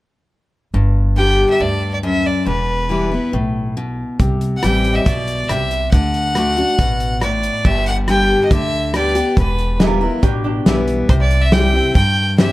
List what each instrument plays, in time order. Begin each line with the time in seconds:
0.74 upright bass G1, steel-string acoustic guitar G2
1.16 steel-string acoustic guitar D3 G3 B3 G4, fiddle G5
1.50 fiddle E5
1.60 upright bass D2, steel-string acoustic guitar G2, fiddle D5
1.93 fiddle D5
2.03 steel-string acoustic guitar F#2, fiddle E5
2.26 fiddle D5
2.46 upright bass E1, steel-string acoustic guitar E2, fiddle B4
2.89 steel-string acoustic guitar E3 G3 B3 E4
3.11 steel-string acoustic guitar B3 E4
3.33 upright bass B1, steel-string acoustic guitar A2
3.77 steel-string acoustic guitar B2
4.20 upright bass C2, steel-string acoustic guitar C3, kick, closed hi-hat
4.41 closed hi-hat
4.57 fiddle F#5
4.63 upright bass A1, steel-string acoustic guitar E3 G3 C4 E4, fiddle G5, cross-stick, closed hi-hat
4.84 closed hi-hat
4.93 fiddle D#5 E5
5.05 upright bass B1, steel-string acoustic guitar B2, fiddle D5, kick, closed hi-hat
5.28 closed hi-hat
5.48 upright bass C2, steel-string acoustic guitar C3, fiddle E5, cross-stick, closed hi-hat
5.71 closed hi-hat
5.91 upright bass D2, steel-string acoustic guitar D3, fiddle F#5, kick, closed hi-hat
6.14 closed hi-hat
6.35 steel-string acoustic guitar D3 A3 D4 F#4, cross-stick, closed hi-hat
6.57 steel-string acoustic guitar D4 F#4, closed hi-hat
6.79 upright bass A1, steel-string acoustic guitar B2, kick, closed hi-hat
7.00 closed hi-hat
7.21 steel-string acoustic guitar A2, fiddle D5, cross-stick, closed hi-hat
7.43 closed hi-hat
7.65 upright bass G1, steel-string acoustic guitar G2, fiddle E5, kick, crash
7.86 fiddle F#5, closed hi-hat
8.08 steel-string acoustic guitar D3 G3 B3 G4, fiddle G5, cross-stick, closed hi-hat
8.45 fiddle D#5
8.51 upright bass D2, steel-string acoustic guitar D3, fiddle E5, kick, closed hi-hat
8.94 steel-string acoustic guitar D3 G3 B3 G4, fiddle D5, cross-stick, closed hi-hat
9.15 steel-string acoustic guitar B3 G4, closed hi-hat
9.37 upright bass E1, steel-string acoustic guitar E2, fiddle B4, kick, closed hi-hat
9.59 closed hi-hat
9.79 steel-string acoustic guitar E3 G3 B3 E4, resonator guitar played with a steel bar F4 A#4, snare, closed hi-hat
10.01 steel-string acoustic guitar B3 E4, resonator guitar played with a steel bar F4 A#4
10.22 upright bass A1, steel-string acoustic guitar B2, resonator guitar played with a steel bar D4 G4, kick, closed hi-hat
10.44 resonator guitar played with a steel bar D4 G4
10.66 upright bass B1, steel-string acoustic guitar E3 G3 B3 E4, resonator guitar played with a steel bar E4, snare, closed hi-hat
10.88 closed hi-hat
11.09 upright bass C2, steel-string acoustic guitar C3, fiddle C5, kick, closed hi-hat
11.20 fiddle D5
11.31 closed hi-hat
11.42 fiddle E5
11.52 steel-string acoustic guitar E3 G3 C4 E4, fiddle G5, snare, closed hi-hat
11.73 steel-string acoustic guitar C4 E4
11.95 upright bass G2, steel-string acoustic guitar G2, fiddle G5, kick, closed hi-hat
12.38 steel-string acoustic guitar E3 G3 C4 E4, fiddle E5, snare, closed hi-hat